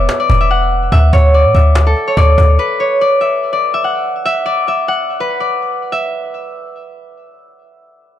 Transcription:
0.00 1.30 B4 loud
0.00 0.19 D5 medium
0.00 0.40 E5 medium
0.09 cajon slap loud
0.20 1.19 D5 medium
0.30 0.90 E1 loud
0.30 cajon bass loud
0.41 0.92 E5 medium
0.50 2.11 F#5 medium
0.50 cajon slap soft
0.62 cajon slap soft
0.71 cajon slap soft
0.92 1.12 D2 loud
0.92 1.54 E5 loud
0.92 cajon bass loud
1.13 1.46 D2 loud
1.13 1.40 C#5 medium
1.13 cajon bass medium
1.34 2.14 D5 medium
1.34 cajon slap soft
1.45 1.54 A2 loud
1.55 1.95 D2 loud
1.55 3.20 E5 medium
1.55 cajon bass medium
1.75 cajon slap loud
1.87 4.06 A4 medium
1.96 cajon slap medium
2.08 2.23 C#5 medium
2.17 2.37 D2 loud
2.17 2.86 D5 medium
2.17 cajon bass loud
2.38 2.58 D2 loud
2.38 cajon bass loud
2.59 4.64 B4 medium
2.80 3.07 C#5 medium
3.01 3.52 D5 medium
3.21 3.73 E5 medium
3.53 4.45 D5 medium
3.74 4.25 E5 medium
3.84 4.88 F#5 medium
4.25 4.68 E5 loud
4.46 5.40 D5 medium
4.68 5.92 E5 medium
4.88 6.49 F#5 medium
5.20 7.25 B4 medium
5.40 7.25 D5 medium
5.92 7.64 E5 medium

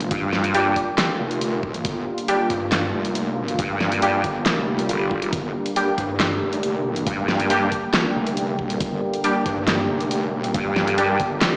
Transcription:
0.00 11.57 D3 medium
0.00 11.57 G3 medium
0.00 11.57 A#3 medium
0.00 5.31 F4 medium
0.00 closed hi-hat medium
0.11 0.75 G2 loud
0.11 kick loud
0.11 closed hi-hat medium
0.33 snare medium
0.44 closed hi-hat medium
0.54 0.75 G3 medium
0.54 0.74 D4 medium
0.54 0.75 G4 loud
0.54 closed hi-hat medium
0.76 kick medium
0.76 closed hi-hat soft
0.98 snare loud
0.98 clap medium
0.98 closed hi-hat medium
1.20 1.83 F1 loud
1.31 closed hi-hat medium
1.41 closed hi-hat medium
1.63 kick medium
1.74 closed hi-hat medium
1.85 2.05 G1 loud
1.85 kick loud
1.85 closed hi-hat medium
2.18 closed hi-hat medium
2.28 2.48 G3 medium
2.28 2.48 D4 medium
2.28 2.48 G4 loud
2.28 closed hi-hat medium
2.50 2.92 G2 loud
2.50 kick medium
2.50 closed hi-hat medium
2.72 snare loud
2.72 clap medium
2.72 closed hi-hat medium
2.94 3.57 F1 loud
3.05 closed hi-hat medium
3.15 closed hi-hat medium
3.48 closed hi-hat medium
3.59 4.22 G2 medium
3.59 kick loud
3.59 closed hi-hat medium
3.81 snare medium
3.92 closed hi-hat medium
4.02 4.22 G3 medium
4.02 4.22 D4 medium
4.02 4.22 G4 loud
4.02 closed hi-hat medium
4.24 4.44 G1 loud
4.24 kick medium
4.24 closed hi-hat medium
4.46 4.88 F1 loud
4.46 snare loud
4.46 clap medium
4.46 closed hi-hat medium
4.46 swell medium
4.79 closed hi-hat medium
4.89 5.31 G1 medium
4.89 closed hi-hat medium
5.11 kick medium
5.22 closed hi-hat medium
5.33 5.53 G1 loud
5.33 11.57 G4 medium
5.33 kick loud
5.33 closed hi-hat medium
5.66 closed hi-hat medium
5.76 5.96 G3 medium
5.76 5.96 D4 medium
5.76 5.96 G4 loud
5.76 closed hi-hat medium
5.98 6.40 G2 loud
5.98 kick medium
5.98 closed hi-hat medium
6.20 snare loud
6.20 clap medium
6.20 closed hi-hat medium
6.41 7.05 F1 loud
6.53 closed hi-hat medium
6.63 closed hi-hat medium
6.96 closed hi-hat medium
7.07 7.70 G2 loud
7.07 kick loud
7.07 closed hi-hat medium
7.28 snare medium
7.40 closed hi-hat medium
7.50 7.70 G3 medium
7.50 7.70 D4 medium
7.50 7.70 G4 loud
7.50 closed hi-hat medium
7.72 kick medium
7.72 closed hi-hat medium
7.94 snare loud
7.94 clap medium
7.94 closed hi-hat medium
8.15 8.60 F1 loud
8.27 closed hi-hat medium
8.37 closed hi-hat medium
8.59 8.79 E1 loud
8.59 kick medium
8.70 closed hi-hat medium
8.80 9.01 G1 loud
8.80 kick loud
8.80 closed hi-hat medium
9.14 closed hi-hat medium
9.24 9.44 G3 medium
9.24 9.44 D4 medium
9.24 9.44 G4 loud
9.24 closed hi-hat medium
9.46 9.88 G2 loud
9.46 kick medium
9.46 closed hi-hat medium
9.67 snare loud
9.67 clap medium
9.67 closed hi-hat medium
9.89 10.34 F1 loud
10.01 closed hi-hat medium
10.11 closed hi-hat medium
10.34 10.53 E1 loud
10.44 closed hi-hat medium
10.54 11.18 G2 medium
10.54 kick loud
10.54 closed hi-hat medium
10.76 snare medium
10.87 closed hi-hat medium
10.98 11.18 G3 medium
10.98 11.18 D4 medium
10.98 11.18 G4 loud
10.98 closed hi-hat medium
11.20 11.40 G1 loud
11.20 kick medium
11.20 closed hi-hat soft
11.41 11.57 G1 medium
11.41 snare loud
11.41 clap medium
11.41 closed hi-hat medium

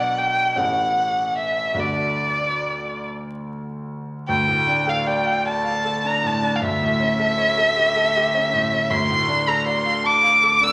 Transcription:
0.00 0.53 B1 medium
0.00 0.52 B3 soft
0.00 0.52 D4 medium
0.00 0.53 F#4 soft
0.00 0.19 F#5 medium
0.18 0.58 G5 medium
0.56 1.75 A1 soft
0.56 1.75 C#4 soft
0.56 1.75 E4 soft
0.56 1.76 A4 soft
0.56 1.38 F#5 medium
1.38 1.81 E5 medium
1.74 4.22 D2 soft
1.74 4.22 D4 soft
1.74 4.23 F#4 soft
1.74 4.24 A4 soft
1.80 3.05 D5 medium
4.28 6.58 D2 medium
4.28 4.91 G5 medium
4.48 4.79 A2 soft
4.67 4.99 D4 medium
4.87 5.18 A4 medium
4.87 5.09 F5 medium
5.06 5.38 D5 medium
5.06 5.46 G5 medium
5.25 5.57 F5 medium
5.45 5.77 D5 medium
5.45 6.08 A5 medium
5.64 5.96 F5 medium
5.85 6.16 A4 medium
6.05 6.36 D4 soft
6.05 6.28 A#5 medium
6.23 6.54 A2 medium
6.23 6.57 A5 medium
6.42 6.62 D4 soft
6.55 6.63 F5 medium
6.61 8.87 D2 medium
6.61 8.92 E5 loud
6.81 7.12 A2 medium
7.00 7.31 C#4 medium
7.19 7.50 A4 medium
7.38 7.69 C#5 medium
7.58 7.88 A4 medium
7.76 8.07 G4 medium
7.96 8.27 A4 medium
8.16 8.46 G4 medium
8.34 8.65 C#4 medium
8.53 8.83 A2 medium
8.71 8.91 C#4 medium
8.90 10.72 D2 medium
8.90 9.50 C6 loud
9.10 9.40 A2 medium
9.28 9.59 D4 medium
9.48 9.78 A4 medium
9.48 9.66 A#5 medium
9.66 9.97 D5 medium
9.66 10.07 C6 medium
9.85 10.16 F5 medium
10.04 10.35 A5 medium
10.04 10.65 D6 loud
10.23 10.54 F5 medium
10.43 10.72 A4 medium
10.61 10.72 D4 medium
10.61 10.72 E6 loud

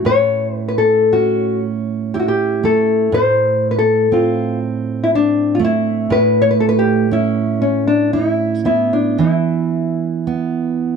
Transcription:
0.00 2.63 A3 soft
0.00 1.11 C#4 soft
0.00 2.14 E4 soft
0.05 3.11 A2 soft
0.05 0.55 C#5 medium
0.55 0.68 B4 medium
0.68 0.76 B4 soft
0.78 1.13 A4 medium
1.12 3.23 C#4 soft
1.12 1.60 F#4 medium
2.14 3.23 E4 soft
2.14 2.19 G4 medium
2.20 2.26 F#4 soft
2.28 2.65 G4 medium
2.63 5.59 A3 soft
2.63 3.14 A4 medium
3.12 6.09 A2 medium
3.12 3.71 C5 medium
3.71 3.78 B4 medium
3.79 4.09 A4 medium
4.12 6.20 C4 soft
4.12 4.58 F4 medium
5.04 5.10 E4 medium
5.15 5.57 D4 medium
5.55 5.60 F4 soft
5.59 8.65 A3 soft
5.64 6.14 E4 medium
6.10 9.18 A2 medium
6.10 6.41 B4 medium
6.42 6.50 C#5 medium
6.51 6.59 B4 medium
6.60 6.68 A4 medium
6.69 6.77 B4 medium
6.79 7.12 G4 medium
7.11 9.29 C#4 soft
7.11 7.61 E4 medium
7.62 7.87 C#4 medium
7.87 8.13 D4 medium
8.13 8.65 E4 medium
8.13 10.96 E4 soft
8.65 10.27 B3 soft
8.65 8.93 E4 medium
8.93 9.19 D4 medium
9.18 10.96 E3 medium
9.18 10.96 E4 medium
10.27 10.96 B3 soft

